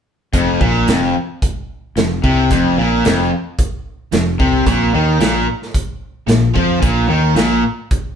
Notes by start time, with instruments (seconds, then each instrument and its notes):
0.33 fingered electric bass F1, overdriven electric guitar F2, kick, closed hi-hat
0.60 fingered electric bass A#1, overdriven electric guitar A#2, kick
0.87 fingered electric bass F1, overdriven electric guitar F2, snare, closed hi-hat
1.42 kick, closed hi-hat
1.96 fingered electric bass F1, overdriven electric guitar F2, snare, closed hi-hat
2.24 fingered electric bass C2, overdriven electric guitar C3, kick
2.51 fingered electric bass F1, overdriven electric guitar F2, kick, closed hi-hat
2.77 fingered electric bass A#1, overdriven electric guitar A#2
3.04 fingered electric bass F1, overdriven electric guitar F2, snare, closed hi-hat
3.59 kick, closed hi-hat
4.12 fingered electric bass F1, overdriven electric guitar F2, snare, closed hi-hat
4.39 fingered electric bass C2, overdriven electric guitar C3, kick
4.66 fingered electric bass A#1, overdriven electric guitar A#2, kick, closed hi-hat
4.94 fingered electric bass D#2, overdriven electric guitar D#3
5.20 fingered electric bass A#1, overdriven electric guitar A#2, snare, closed hi-hat
5.62 snare
5.74 kick, closed hi-hat
6.27 fingered electric bass A#1, overdriven electric guitar A#2, snare, closed hi-hat
6.55 fingered electric bass F2, overdriven electric guitar F3, kick
6.81 fingered electric bass A#1, overdriven electric guitar A#2, kick, closed hi-hat
7.08 fingered electric bass D#2, overdriven electric guitar D#3
7.35 fingered electric bass A#1, overdriven electric guitar A#2, snare, closed hi-hat
7.91 kick, closed hi-hat